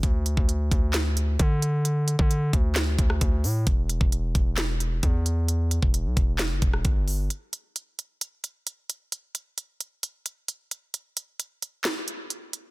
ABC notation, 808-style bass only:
X:1
M:4/4
L:1/16
Q:1/4=132
K:Em
V:1 name="808-style bass" clef=bass
D,,3 D,,3 D,,6 D,4- | D,3 D,3 D,,4 D,,2 D,,2 A,,2 | E,,,3 E,,,3 E,,,6 E,,4- | E,,3 E,,,2 B,,, E,,,3 F,,, E,,,2 G,,,4 |
z16 | z16 | z16 |]